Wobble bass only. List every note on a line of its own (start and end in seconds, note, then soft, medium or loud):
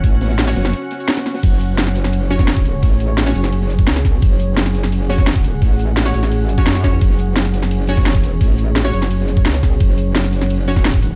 0.04 0.55 A1 loud
0.56 0.73 F#1 loud
1.43 2.43 F#1 loud
2.43 2.65 E1 loud
2.65 2.81 D1 loud
2.83 3.34 A1 medium
3.35 3.86 F#1 loud
3.87 4.21 C#2 loud
4.22 5.22 F#1 loud
5.22 5.44 E1 loud
5.44 5.60 D1 loud
5.62 6.13 A1 loud
6.14 6.65 A1 loud
6.67 7.00 F#2 loud
7.01 7.98 F#1 loud
7.98 8.26 F1 loud
8.26 8.40 E1 loud
8.41 8.92 A1 loud
8.93 9.44 F#1 medium
9.46 9.79 C#2 loud
9.80 11.15 F#1 loud